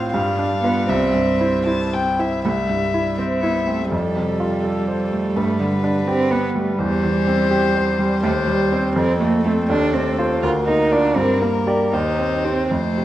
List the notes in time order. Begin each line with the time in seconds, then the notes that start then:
Already playing: A2 C4 F4 C5 F5
0.13 G2 G3 F5
0.39 D4
0.64 B3 F4 B4
0.89 C2 C4 E5
1.14 G2
1.40 E4 C5
1.66 E4 C5 A5
1.93 C4 G5
2.19 E4 C5 E5
2.45 C2 A3 E5
2.69 G2 G3
2.94 E4
3.18 C4 C5 E5
3.43 B3 E4
3.67 A3 C4
3.92 F2 G3 A4
4.16 C3
4.40 F4
4.64 A4
4.88 C5
5.12 A3
5.36 G2 A3 B4
5.60 D3 G3
5.84 D4
6.08 C4 G4
6.31 B3 B4
6.55 G3 A3
6.79 E2 G3 C5
7.03 E3
7.27 C4
7.51 G4
7.75 C5
7.99 G3
8.23 D#2 A3 C5
8.47 G3
8.72 C4 C5
8.96 F2 C4 A4
9.20 A3 A#3
9.44 A3 C4 C5
9.68 D#2 D4 A4
9.93 A3 C4
10.19 F4 C5
10.42 D2 F4 A#4
10.67 A#3 D#4
10.92 D4 F4 D5
11.16 G2 C4 A#4
11.42 A#3
11.67 G4 D5
11.93 D#2 D#4 C5
12.19 C4
12.44 C4 G4 C5
12.71 F2 A3 C5
12.98 C3